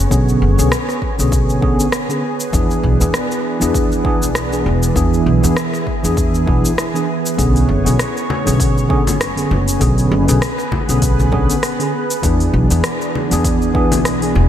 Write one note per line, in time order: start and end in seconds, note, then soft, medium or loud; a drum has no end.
0.00 7.34 B3 medium
0.00 12.19 G#4 medium
0.00 2.50 C#5 medium
0.10 0.35 B1 medium
0.10 0.54 D3 medium
0.10 0.54 B3 medium
0.10 0.55 C#4 medium
0.10 0.55 G#4 medium
0.10 kick loud
0.10 shaker medium
0.29 shaker soft
0.42 0.54 F#1 loud
0.58 0.69 B1 loud
0.58 0.70 D3 medium
0.58 0.71 B3 medium
0.58 0.71 C#4 medium
0.58 0.71 G#4 medium
0.58 shaker medium
0.72 cross-stick loud
0.72 shaker medium
0.89 cross-stick soft
0.89 shaker soft
1.02 kick medium
1.18 1.73 B1 medium
1.18 1.59 D3 medium
1.18 1.59 B3 medium
1.18 1.60 C#4 medium
1.18 1.60 G#4 medium
1.18 shaker medium
1.32 kick loud
1.32 shaker medium
1.50 shaker soft
1.61 1.85 D3 medium
1.61 1.85 B3 medium
1.61 1.86 C#4 medium
1.61 1.86 G#4 loud
1.61 kick loud
1.80 shaker medium
1.92 cross-stick loud
1.92 shaker medium
2.09 2.22 D3 medium
2.09 2.22 B3 medium
2.09 2.22 C#4 medium
2.09 2.23 G#4 medium
2.09 shaker soft
2.40 shaker medium
2.53 2.77 E2 loud
2.53 2.96 E3 medium
2.53 7.34 E3 medium
2.53 2.97 B3 medium
2.53 4.93 D4 medium
2.53 2.97 D4 medium
2.53 2.97 G#4 medium
2.53 kick loud
2.53 shaker medium
2.71 shaker soft
2.84 2.97 B1 loud
2.84 kick medium
3.00 3.11 E2 loud
3.00 3.13 E3 medium
3.00 3.13 B3 medium
3.00 3.13 D4 medium
3.00 3.14 G#4 medium
3.00 shaker medium
3.14 cross-stick loud
3.14 shaker medium
3.31 shaker soft
3.60 4.22 E2 medium
3.60 4.01 E3 medium
3.60 4.02 B3 medium
3.60 4.02 D4 medium
3.60 4.03 G#4 medium
3.60 shaker medium
3.74 kick loud
3.74 shaker medium
3.92 shaker soft
4.04 4.28 E3 medium
4.04 4.28 B3 medium
4.04 4.28 D4 medium
4.04 4.29 G#4 loud
4.04 kick loud
4.22 4.67 B1 medium
4.22 shaker medium
4.35 cross-stick medium
4.35 shaker medium
4.51 4.64 E3 medium
4.51 4.64 B3 medium
4.51 4.65 D4 medium
4.51 4.65 G#4 medium
4.51 shaker soft
4.66 4.90 E1 medium
4.83 shaker medium
4.95 5.20 E2 medium
4.95 5.39 E3 medium
4.95 5.39 B3 medium
4.95 5.39 D4 medium
4.95 7.36 E4 medium
4.95 5.40 G#4 loud
4.95 kick loud
4.95 shaker medium
5.14 shaker soft
5.26 5.39 B1 loud
5.42 5.53 E2 medium
5.42 5.55 E3 medium
5.42 5.55 B3 medium
5.42 5.56 D4 medium
5.42 5.56 G#4 medium
5.42 shaker medium
5.57 cross-stick loud
5.57 shaker medium
5.74 cross-stick soft
5.74 shaker soft
5.87 kick medium
6.03 6.47 E2 medium
6.03 6.44 E3 medium
6.03 6.44 B3 medium
6.03 6.44 D4 medium
6.03 6.45 G#4 loud
6.03 shaker medium
6.17 kick loud
6.17 shaker medium
6.35 shaker soft
6.46 6.60 B1 medium
6.46 6.70 E3 medium
6.46 6.70 B3 medium
6.46 6.71 D4 medium
6.46 6.71 G#4 medium
6.46 kick loud
6.65 shaker medium
6.78 cross-stick medium
6.78 shaker medium
6.94 7.06 E3 medium
6.94 7.07 B3 medium
6.94 7.07 D4 medium
6.94 7.08 G#4 medium
6.94 shaker soft
7.26 shaker medium
7.37 7.62 B1 medium
7.37 7.81 D3 medium
7.37 7.81 B3 medium
7.37 14.49 B3 medium
7.37 7.82 C#4 medium
7.37 7.82 G#4 medium
7.37 9.79 C#5 medium
7.37 kick loud
7.37 open hi-hat soft
7.37 shaker soft
7.56 open hi-hat soft
7.56 shaker soft
7.69 7.82 F#1 medium
7.69 kick medium
7.84 7.96 B1 loud
7.84 7.97 D3 medium
7.84 7.98 B3 medium
7.84 7.98 C#4 medium
7.84 7.98 G#4 medium
7.84 open hi-hat soft
7.84 shaker medium
7.99 cross-stick medium
7.99 open hi-hat medium
7.99 shaker medium
8.17 shaker soft
8.30 high conga medium
8.45 9.08 B1 medium
8.45 8.86 D3 medium
8.45 8.86 B3 medium
8.45 8.87 C#4 medium
8.45 8.87 G#4 medium
8.45 open hi-hat soft
8.45 shaker medium
8.60 kick loud
8.60 open hi-hat medium
8.60 shaker medium
8.78 shaker soft
8.88 9.12 D3 medium
8.88 9.13 B3 medium
8.88 9.13 C#4 medium
8.88 9.13 G#4 loud
8.88 kick loud
9.07 9.46 F#1 medium
9.07 open hi-hat soft
9.07 high conga medium
9.07 shaker medium
9.21 cross-stick medium
9.21 open hi-hat medium
9.21 shaker medium
9.36 9.49 D3 medium
9.36 9.49 B3 medium
9.36 9.49 C#4 medium
9.36 9.50 G#4 medium
9.36 open hi-hat soft
9.36 shaker soft
9.51 9.75 F#1 medium
9.51 high conga medium
9.68 open hi-hat soft
9.68 shaker medium
9.79 10.05 B1 loud
9.79 10.23 D3 medium
9.79 10.24 B3 medium
9.79 10.24 C#4 medium
9.79 10.25 G#4 loud
9.79 12.21 B4 medium
9.79 kick loud
9.79 open hi-hat medium
9.79 shaker soft
9.98 open hi-hat soft
9.98 shaker soft
10.11 10.24 F#1 loud
10.27 10.38 B1 loud
10.27 10.40 D3 medium
10.27 10.40 B3 medium
10.27 10.40 C#4 medium
10.27 10.41 G#4 medium
10.27 open hi-hat soft
10.27 high conga medium
10.27 shaker medium
10.42 cross-stick loud
10.42 open hi-hat medium
10.42 shaker medium
10.58 cross-stick soft
10.58 shaker soft
10.72 kick medium
10.72 high conga medium
10.88 11.43 B1 medium
10.88 11.29 D3 medium
10.88 11.29 B3 medium
10.88 11.30 C#4 medium
10.88 11.30 G#4 medium
10.88 open hi-hat soft
10.88 shaker medium
11.02 kick loud
11.02 open hi-hat medium
11.02 shaker medium
11.20 high conga medium
11.20 shaker soft
11.31 11.55 D3 medium
11.31 11.55 B3 medium
11.31 11.56 C#4 medium
11.31 11.56 G#4 loud
11.31 kick loud
11.31 low conga medium
11.50 open hi-hat soft
11.50 shaker medium
11.63 cross-stick medium
11.63 open hi-hat medium
11.63 shaker soft
11.79 11.91 D3 medium
11.79 11.92 B3 medium
11.79 11.92 C#4 medium
11.79 11.93 G#4 medium
11.79 open hi-hat soft
11.79 shaker soft
12.10 open hi-hat soft
12.10 shaker medium
12.22 12.47 E2 medium
12.22 12.66 E3 medium
12.22 14.49 E3 medium
12.22 12.66 B3 medium
12.22 12.67 D4 medium
12.22 14.49 D4 medium
12.22 14.49 G#4 medium
12.22 12.67 G#4 medium
12.22 kick loud
12.22 open hi-hat medium
12.22 shaker medium
12.40 open hi-hat soft
12.40 shaker soft
12.54 12.66 B1 loud
12.54 kick medium
12.70 12.81 E2 loud
12.70 12.82 E3 medium
12.70 12.83 B3 medium
12.70 12.83 D4 medium
12.70 12.84 G#4 medium
12.70 open hi-hat soft
12.70 shaker medium
12.84 cross-stick loud
12.84 open hi-hat medium
12.84 shaker medium
13.02 shaker soft
13.15 high conga medium
13.31 13.92 E2 medium
13.31 13.71 E3 medium
13.31 13.72 B3 medium
13.31 13.72 D4 medium
13.31 13.72 G#4 loud
13.31 open hi-hat soft
13.31 shaker medium
13.44 kick loud
13.44 open hi-hat medium
13.44 shaker medium
13.62 shaker soft
13.74 13.97 E3 medium
13.74 13.98 B3 medium
13.74 13.98 D4 medium
13.74 13.99 G#4 loud
13.74 kick loud
13.92 14.37 B1 medium
13.92 open hi-hat soft
13.92 high conga medium
13.92 shaker medium
14.05 cross-stick medium
14.05 open hi-hat medium
14.05 shaker soft
14.21 14.34 E3 medium
14.21 14.34 B3 medium
14.21 14.35 D4 medium
14.21 14.35 G#4 medium
14.21 open hi-hat soft
14.21 shaker soft
14.35 14.49 E1 loud
14.35 high conga medium